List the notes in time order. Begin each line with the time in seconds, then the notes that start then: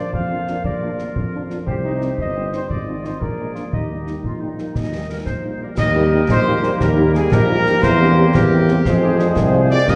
Already playing: F4 C5
0.13 F2 F5, concert bass drum
0.31 A#3 D4 F4
0.47 A#3 D4 F4, snare
0.64 A#1 A#4 D5, concert bass drum
0.83 A#3 D4 F4
0.99 A#3 D4 F4, snare
1.16 F2, concert bass drum
1.35 A#3 D4 F4
1.50 A#3 D4 F4, snare
1.67 C2 G4 C5, concert bass drum
1.85 G3 C4 D#4
2.01 G3 C4 D#4, snare
2.18 G1 D#5, concert bass drum
2.35 G3 C4 D#4
2.53 G3 C4 D#4 C5, snare
2.69 G#1 F4 D5 D#5, concert bass drum
2.87 F3 C4 D#4
3.04 F3 C4 D#4 C5, snare
3.20 A#1 G#4 A#4 D5, concert bass drum
3.39 G#3 A#3 D4
3.55 G#3 A#3 D4 F4, snare
3.72 D#2 D#4 G4 D#5, concert bass drum
3.91 G3 A#3 D#4
4.07 G3 A#3 D#4, snare
4.24 A#1 F4, concert bass drum
4.41 G3 A#3 D#4
4.58 G3 A#3 D#4, snare
4.75 D#2 D#5, concert bass drum, snare
4.93 G3 A#3 D#4
5.10 G3 A#3 D#4 A#4
5.25 A#1 C5, concert bass drum, snare
5.44 G3 A#3 D#4
5.61 G3 A#3 D#4 A#4 D5
5.77 D#2 G3 A#3 G4 A#4 D#5, concert bass drum, snare, crash
5.95 G3 A#3 D#4
6.14 G3 A#3 D#4
6.29 A#1 D#4 C5, concert bass drum, snare
6.46 G3 A#3 D#4 F4
6.62 G3 A#3 D#4, snare
6.80 D#2 G4 A#4, concert bass drum, snare
6.96 G3 A#3 D#4
7.13 G3 A#3 D#4 G#4, snare
7.31 A#1 D#4 G4 A#4, concert bass drum, snare
7.48 G3 A#3 D#4 F4
7.66 G3 A#3 D#4 G4, snare
7.82 E2 G3 A#3 E4 G4 A#4 C5, concert bass drum, snare, crash
8.00 A#3 C4 D4 G4
8.18 A#3 C4 G4
8.34 E2 G4 A#4, concert bass drum, snare
8.51 A#3 C4 G4
8.68 A#3 C4 G4, snare
8.85 F2 F3 G#3 F4 G#4 C5, concert bass drum, snare
9.03 G#3 C4 D#4 F4
9.19 G#3 C4 D4 F4, snare
9.36 C2 C4, concert bass drum, snare
9.54 G#3 C4 F4
9.71 G#3 C4 F4 D5, snare
9.87 G2 D#3 A#3 G4 A#4 D#5, concert bass drum, snare, crash